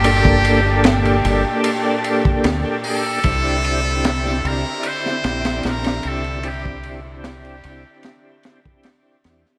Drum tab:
RD |x-x-xxx-x-x-x---|xxx-x-x-x-xxxxxx|x-x-xxx-x-x-x-x-|
HH |--------------o-|----------------|----------------|
SD |----o-------o---|----oo---ooooo--|----o---o-o-o-oo|
BD |-o---------o----|o---------------|-o---------o----|